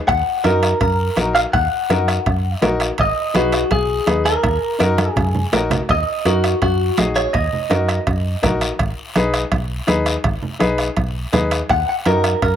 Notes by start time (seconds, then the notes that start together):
0.08 D#2 F#5, bombo low, bombo rim, high conga, high timbale, long guiro
0.44 F#2 D#4 F#4 A#4, bombo rim, high conga, high timbale, short guiro
0.63 bombo rim, high timbale, short guiro
0.81 F#2 A#4, bombo low, bombo rim, high conga, high timbale, long guiro
1.16 A#1 D#4 F#4 A#4, bombo rim, high conga, high timbale, short guiro
1.35 F5, bombo rim, high timbale, short guiro
1.53 D#2 F#5, bombo low, bombo rim, high conga, high timbale, long guiro
1.90 F#2 D#4 F#4 A#4, bombo rim, high conga, high timbale, short guiro
2.08 bombo rim, high timbale, short guiro
2.26 F#2, bombo low, bombo rim, high conga, high timbale, long guiro
2.61 A#1 D#4 F#4 A#4, bombo rim, high conga, high timbale, low timbale, short guiro
2.80 bombo rim, high timbale, short guiro
2.98 G#1 D#5, bombo low, bombo rim, high conga, high timbale, long guiro
3.34 B1 D#4 F#4 G#4 B4, bombo rim, high conga, high timbale, short guiro
3.52 bombo rim, high timbale, short guiro
3.71 B1 G#4, bombo low, bombo rim, high conga, high timbale, long guiro
4.06 D#2 D#4 G#4 B4, bombo rim, high conga, high timbale, short guiro
4.25 A#4, bombo rim, high timbale, short guiro
4.43 D#2, bombo low, bombo rim, high conga, high timbale, long guiro
4.79 F#2 D#4 F#4 A#4, bombo rim, high conga, high timbale, short guiro
4.98 bombo rim, high conga, high timbale, short guiro
5.09 G#4
5.16 F#2, bombo low, bombo rim, low conga, high timbale, long guiro
5.35 low conga
5.52 A#1 D#4 F#4 A#4, bombo rim, high timbale, low timbale, short guiro
5.71 bombo rim, low conga, high timbale, short guiro
5.89 D#2 D#5, bombo low, bombo rim, high conga, high timbale, long guiro
6.25 F#2 D#4 F#4 A#4, bombo rim, high conga, high timbale, short guiro
6.44 bombo rim, high timbale, short guiro
6.62 F#2 F#4, bombo low, bombo rim, high conga, high timbale, long guiro
6.97 A#1 D#4 F#4 G#4, bombo rim, high conga, high timbale, low timbale, short guiro
7.15 C#5, bombo rim, high timbale, short guiro
7.33 D#2 D#5, bombo low, bombo rim, high conga, high timbale, long guiro
7.53 low conga
7.69 F#2 D#4 F#4 A#4, bombo rim, high conga, high timbale, short guiro
7.88 bombo rim, high timbale, short guiro
8.07 F#2, bombo low, bombo rim, high conga, high timbale, long guiro
8.42 A#1 D#4 F#4 A#4, bombo low, bombo rim, high conga, low conga, high timbale, short guiro
8.61 bombo rim, high timbale, short guiro
8.79 G#1, bombo low, bombo rim, high conga, high timbale, long guiro
9.16 B1 D#4 G#4 B4, bombo rim, high conga, high timbale, short guiro
9.34 bombo rim, high timbale, short guiro
9.52 B1, bombo low, bombo rim, high conga, high timbale, long guiro
9.87 D#2 D#4 G#4 B4, bombo rim, high conga, high timbale, short guiro
10.06 bombo rim, high timbale, short guiro
10.24 G#1, bombo low, bombo rim, high conga, high timbale, long guiro
10.42 low conga
10.59 B1 D#4 G#4 B4, bombo rim, high conga, high timbale, short guiro
10.78 bombo rim, high timbale, short guiro
10.97 B1, bombo low, bombo rim, high conga, high timbale, long guiro
11.32 D#2 D#4 G#4 B4, bombo rim, high conga, low conga, high timbale, short guiro
11.51 bombo rim, high timbale, short guiro
11.69 D#2 F#5, bombo low, bombo rim, high conga, high timbale, long guiro
11.89 F#5
12.05 F#2 D#4 F#4 A#4, bombo rim, high conga, high timbale, short guiro
12.24 bombo rim, high timbale, short guiro
12.42 F#2 A#4, bombo low, bombo rim, high conga, high timbale, long guiro